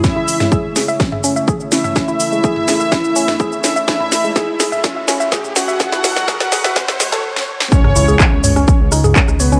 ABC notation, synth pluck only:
X:1
M:4/4
L:1/16
Q:1/4=125
K:Alyd
V:1 name="Synth pluck"
C E z G, G z G e C e C e G z C e | C E z G, G z G e C e C e G z C e | C E z G, G z G e C e C e G z C e | C E z G, G z G e C e G, A z4 |
C z E G C z c C C z D G C z c C |]